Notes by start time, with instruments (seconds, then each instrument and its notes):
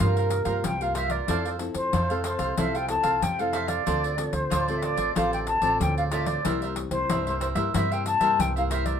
0.00 upright bass G2, nylon-string guitar C3 G3 A#3 F4, cavaquinho F4 A#4 C5 F5, flute A#4, pandeiro
0.16 cavaquinho A#4 C5 F5, pandeiro
0.30 muted cavaquinho stroke, pandeiro
0.45 upright bass G2, nylon-string guitar G3 A#3 F4, cavaquinho A#4 C5 F5, pandeiro
0.64 upright bass C2, nylon-string guitar G2, flute G5, pandeiro
0.81 nylon-string guitar G3 A#3 F4, cavaquinho A#4 C5 F5, flute F5, pandeiro
0.94 cavaquinho F4 A#4 C5 F5, flute E5, pandeiro
1.09 cavaquinho A#4 C5 F5, flute D5, pandeiro
1.28 upright bass F2, nylon-string guitar F3 C4 E4 A4, cavaquinho E4 A4 C5 F5, pandeiro
1.45 cavaquinho A4 C5 F5, pandeiro
1.59 nylon-string guitar C4 E4 A4, muted cavaquinho stroke, pandeiro
1.74 upright bass F2, flute C5, pandeiro
1.93 upright bass F2, nylon-string guitar C3, cavaquinho E4 A4 C5 F5, pandeiro
2.10 nylon-string guitar C4 E4 A4, cavaquinho A4 C5 F5, pandeiro
2.24 cavaquinho E4 A4 C5 F5, flute C5, pandeiro
2.39 upright bass C2, cavaquinho A4 C5 F5, pandeiro
2.57 upright bass C2, nylon-string guitar F3 C4 E4 A4, cavaquinho E4 A4 C5 F5, flute E5, pandeiro
2.74 cavaquinho A4 C5 F5, flute G5, pandeiro
2.88 nylon-string guitar C4 E4 A4, flute A5, muted cavaquinho stroke, pandeiro
3.03 upright bass C2, cavaquinho A4 C5 F5, pandeiro
3.22 upright bass F2, nylon-string guitar C3, flute G5, pandeiro
3.39 nylon-string guitar C4 E4 A4, cavaquinho A4 C5 F5, flute F5, pandeiro
3.53 cavaquinho E4 A4 C5 F5, flute E5, pandeiro
3.67 cavaquinho A4 C5 F5, flute D5, pandeiro
3.86 upright bass D2, nylon-string guitar D3 C4 F4 A4, cavaquinho F4 A4 C5 D5, pandeiro
4.03 cavaquinho A4 C5 D5, pandeiro
4.17 nylon-string guitar C4 F4 A4, muted cavaquinho stroke, pandeiro
4.33 upright bass D2, flute C5, pandeiro
4.50 upright bass D2, nylon-string guitar A2, cavaquinho F4 A4 C5 D5, pandeiro
4.68 nylon-string guitar C4 F4 A4, cavaquinho A4 C5 D5, pandeiro
4.77 flute E5
4.81 cavaquinho F4 A4 C5 D5, flute D5, pandeiro
4.97 upright bass A1, cavaquinho A4 C5 D5, pandeiro
5.15 upright bass A1, nylon-string guitar D3 C4 F4 A4, cavaquinho F4 A4 C5 D5, flute F5, pandeiro
5.32 cavaquinho A4 C5 D5, flute G5, pandeiro
5.47 flute A5, muted cavaquinho stroke, pandeiro
5.62 upright bass A1, nylon-string guitar C4 F4 A4, cavaquinho A4 C5 D5, pandeiro
5.80 upright bass D2, nylon-string guitar A2, flute G5, pandeiro
5.97 cavaquinho A4 C5 D5, flute F5, pandeiro
6.11 nylon-string guitar C4 F4 A4, cavaquinho F4 A4 C5 D5, flute E5, pandeiro
6.26 cavaquinho A4 C5 D5, flute D5, pandeiro
6.45 upright bass C2, nylon-string guitar C3 G3 A#3 E4, cavaquinho E4 A#4 C5 E5, pandeiro
6.62 cavaquinho A#4 C5 E5, pandeiro
6.76 muted cavaquinho stroke, pandeiro
6.91 upright bass C2, nylon-string guitar G3 A#3 E4, flute C5, pandeiro
7.09 upright bass C2, nylon-string guitar G2, cavaquinho E4 A#4 C5 E5, pandeiro
7.27 nylon-string guitar G3 A#3 E4, cavaquinho A#4 C5 E5, pandeiro
7.40 cavaquinho E4 A#4 C5 E5, flute C5, pandeiro
7.55 upright bass G2, nylon-string guitar G3 A#3 E4, cavaquinho A#4 C5 E5, pandeiro
7.74 upright bass G2, nylon-string guitar C3 G3 A#3 E4, cavaquinho E4 A#4 C5 E5, flute E5, pandeiro
7.91 cavaquinho A#4 C5 E5, flute G5, pandeiro
8.06 flute A5, muted cavaquinho stroke, pandeiro
8.21 upright bass G2, nylon-string guitar G3 A#3 E4, cavaquinho A#4 C5 E5, pandeiro
8.39 upright bass C2, nylon-string guitar G2, flute G5, pandeiro
8.56 nylon-string guitar G3 A#3 E4, cavaquinho A#4 C5 E5, flute F5, pandeiro
8.70 cavaquinho E4 A#4 C5 E5, flute E5, pandeiro
8.85 cavaquinho A#4 C5 E5, flute D5, pandeiro